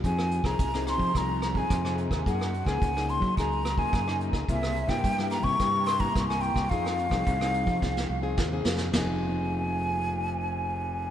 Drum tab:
CC |----------------|----------------|----------------|----------------|
HH |xxx-xxx-x-xxxxxx|xxxxxxxxxxx-x-x-|xxx-xxx-x-xxxxxx|xxxxxxxx--------|
SD |-r-r-rr-r-r-rr-r|-r-r-r--r-r-rr-r|-r-r-rr-r-r-rr-r|-r-r-r--oo--o-oo|
FT |----------------|----------------|----------------|----------------|
BD |o--oo--oo--oo--o|o--oo--oo--oo--o|o--oo--oo--oo--o|o--oo--oo---o---|

CC |x---------------|
HH |----------------|
SD |o---------------|
FT |o---------------|
BD |----------------|